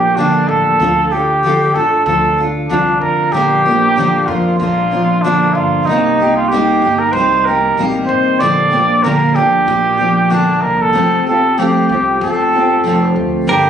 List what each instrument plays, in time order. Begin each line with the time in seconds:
Already playing: upright bass A#1, steel-string acoustic guitar F3 A#3 D4 G4, trumpet G4
0.16 steel-string acoustic guitar D3 F3 A#3 D4 G4, trumpet D4
0.48 upright bass A1, trumpet A4
0.80 upright bass D2, steel-string acoustic guitar D3 F3 D4 F4 A4
1.11 steel-string acoustic guitar D4 F4 A4, trumpet G4
1.43 steel-string acoustic guitar D3 F3 D4 F4 A4
1.74 upright bass A1, steel-string acoustic guitar D4 F4 A4, trumpet A4
2.06 upright bass D2, steel-string acoustic guitar F3 D4 F4 A4, trumpet A4
2.38 steel-string acoustic guitar D4 F4 A4
2.69 upright bass C2, steel-string acoustic guitar D3 F3 D4 F4, trumpet D4
3.00 upright bass F1, trumpet A#4
3.32 upright bass A#1, steel-string acoustic guitar A#2 D3 F3 A#3 D4 A#4, trumpet G4
3.65 steel-string acoustic guitar F3 A#3 D4 A#4
3.96 steel-string acoustic guitar A#2 D3 F3 A#3 D4 A#4
4.27 upright bass F2, steel-string acoustic guitar A#3 D4 A#4, trumpet F4
4.31 steel-string acoustic guitar F3
4.58 upright bass A#1, steel-string acoustic guitar F3 A#3 D4, trumpet F4
4.63 steel-string acoustic guitar A#4
4.91 steel-string acoustic guitar F3 A#3 D4 A#4
5.22 steel-string acoustic guitar A#2 D3 F3 A#3 D4 A#4, trumpet D4
5.53 upright bass G1, trumpet F4
5.85 upright bass C2, steel-string acoustic guitar C3, trumpet D#4
5.89 steel-string acoustic guitar G3 A#3 D#4 G4
6.20 steel-string acoustic guitar A#3 D#4 G4
6.36 trumpet F4
6.48 steel-string acoustic guitar C3 G3, trumpet G4
6.53 steel-string acoustic guitar A#3 D#4 G4
6.82 upright bass G1, steel-string acoustic guitar D#4 G4
6.86 steel-string acoustic guitar A#3
6.99 trumpet A#4
7.12 upright bass C2, steel-string acoustic guitar G3, trumpet C5
7.17 steel-string acoustic guitar A#3 D#4 G4
7.45 steel-string acoustic guitar G4, trumpet A#4
7.49 steel-string acoustic guitar A#3 D#4
7.77 upright bass A1, steel-string acoustic guitar C3 G3 A#3 D#4 G4
8.06 upright bass F1, trumpet C5
8.40 upright bass A#1, steel-string acoustic guitar A#2 D3 F3 A#3 D4 G4, trumpet D5
8.71 steel-string acoustic guitar F3 A#3 D4 G4
9.03 steel-string acoustic guitar A#2 D3 F3 A#3 D4 G4, trumpet A#4
9.35 upright bass D2, steel-string acoustic guitar F3 A#3 D4 G4, trumpet G4
9.67 upright bass A#1, steel-string acoustic guitar F3 A#3 D4 G4
9.98 steel-string acoustic guitar F3 A#3 D4 G4
10.30 steel-string acoustic guitar A#2 D3 F3 A#3 D4 G4, trumpet D4
10.62 upright bass C2, trumpet A#4
10.81 trumpet A4
10.93 upright bass F1, steel-string acoustic guitar F3 A3 C4 F4 G4
11.27 steel-string acoustic guitar C4 F4 G4, trumpet A4
11.57 steel-string acoustic guitar F3 A3 C4 F4 G4, trumpet G4
11.89 upright bass C2, steel-string acoustic guitar C4 F4 G4, trumpet G4
12.21 upright bass F1, steel-string acoustic guitar A3 C4 F4 G4, trumpet A4
12.53 steel-string acoustic guitar C4 F4 G4
12.84 upright bass F1, steel-string acoustic guitar F3 A3 C4 F4 G4
13.16 upright bass D2
13.47 upright bass G1, steel-string acoustic guitar G2 D3 G3 A#3 D4 G4, trumpet G4, clean electric guitar A#4